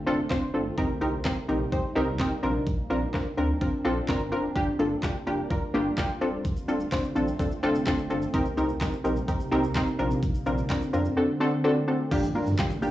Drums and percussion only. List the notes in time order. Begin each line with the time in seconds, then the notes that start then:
0.31 kick, snare, clap
0.78 kick, closed hi-hat
1.01 closed hi-hat
1.25 kick, snare, clap, closed hi-hat
1.49 closed hi-hat
1.72 kick, closed hi-hat
1.96 closed hi-hat
2.20 kick, snare, clap, closed hi-hat
2.43 closed hi-hat
2.67 kick, closed hi-hat
2.90 closed hi-hat
3.14 kick, snare, clap, closed hi-hat
3.38 closed hi-hat
3.61 kick, closed hi-hat
3.85 closed hi-hat
4.08 kick, snare, clap, closed hi-hat
4.32 closed hi-hat
4.56 kick, closed hi-hat
4.79 closed hi-hat
5.03 kick, snare, clap, closed hi-hat
5.27 closed hi-hat
5.50 kick, closed hi-hat
5.74 closed hi-hat
5.98 kick, snare, clap, closed hi-hat
6.21 closed hi-hat
6.45 kick, closed hi-hat, shaker
6.56 shaker
6.68 closed hi-hat, shaker
6.80 shaker
6.92 kick, snare, clap, closed hi-hat, shaker
7.04 shaker
7.16 closed hi-hat, shaker
7.27 shaker
7.39 kick, closed hi-hat, shaker
7.51 shaker
7.63 closed hi-hat, shaker
7.75 shaker
7.87 kick, snare, clap, closed hi-hat, shaker
7.98 shaker
8.10 closed hi-hat, shaker
8.22 shaker
8.34 kick, closed hi-hat, shaker
8.45 shaker
8.57 closed hi-hat, shaker
8.69 shaker
8.81 kick, snare, clap, closed hi-hat, shaker
8.93 shaker
9.05 closed hi-hat, shaker
9.16 shaker
9.28 kick, closed hi-hat, shaker
9.40 shaker
9.52 closed hi-hat, shaker
9.64 shaker
9.75 kick, snare, clap, closed hi-hat, shaker
9.87 shaker
9.99 closed hi-hat, shaker
10.11 shaker
10.23 kick, closed hi-hat, shaker
10.34 shaker
10.46 closed hi-hat, shaker
10.58 shaker
10.70 kick, snare, clap, closed hi-hat, shaker
10.82 shaker
10.94 closed hi-hat, shaker
11.05 shaker
12.12 kick, closed hi-hat, crash, shaker
12.23 closed hi-hat, shaker
12.35 open hi-hat, shaker
12.47 closed hi-hat, shaker
12.59 kick, snare, clap, closed hi-hat, shaker
12.71 closed hi-hat, shaker
12.83 open hi-hat, shaker